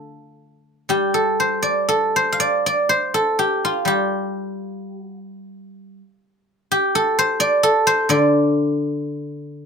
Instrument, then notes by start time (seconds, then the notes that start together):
guzheng
Already playing: D3 D4 F4 A4 D5
0.89 G3 G4
1.14 A4
1.40 C5
1.63 D5
1.89 A4
2.16 C5
2.32 F5
2.40 D5
2.66 D5
2.89 C5
3.14 A4
3.39 G4
3.65 F4
3.85 G3 G4
4.96 F#4
5.21 F4
6.72 G4
6.95 A4
7.19 C5
7.40 D5
7.63 A4
7.87 C5
8.09 D3 D5